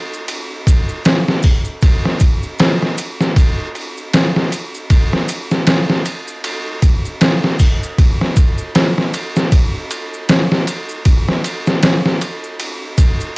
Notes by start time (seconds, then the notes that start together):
0.14 maracas
0.28 ride, maracas
0.67 kick, ride, maracas
0.89 maracas
1.04 snare, ride, maracas
1.28 snare
1.42 kick, open hi-hat, maracas
1.65 maracas
1.81 kick, ride, maracas
2.05 snare
2.20 kick, ride, maracas
2.43 maracas
2.58 snare, ride, maracas
2.82 snare
2.98 ride, maracas
3.21 snare, maracas
3.36 kick, ride, maracas
3.75 ride, maracas
3.97 maracas
4.13 snare, ride, maracas
4.36 snare
4.52 ride, maracas
4.75 maracas
4.90 kick, ride, maracas
5.13 snare
5.28 ride, maracas
5.51 snare, maracas
5.67 snare, ride, maracas
5.90 snare
6.05 ride, maracas
6.28 maracas
6.44 ride, maracas
6.82 kick, ride, maracas
7.05 maracas
7.21 snare, ride, maracas
7.44 snare
7.59 kick, open hi-hat, maracas
7.83 maracas
7.98 kick, ride, maracas
8.21 snare
8.36 kick, ride, maracas
8.58 maracas
8.75 snare, ride, maracas
8.98 snare
9.13 ride, maracas
9.36 snare, maracas
9.52 kick, ride, maracas
9.91 ride, maracas
10.14 maracas
10.29 snare, ride, maracas
10.52 snare
10.67 ride, maracas
10.89 maracas
11.05 kick, ride, maracas
11.29 snare
11.44 ride, maracas
11.66 snare, maracas
11.82 snare, ride, maracas
12.06 snare
12.21 ride, maracas
12.44 maracas
12.60 ride, maracas
12.98 kick, ride, maracas
13.21 maracas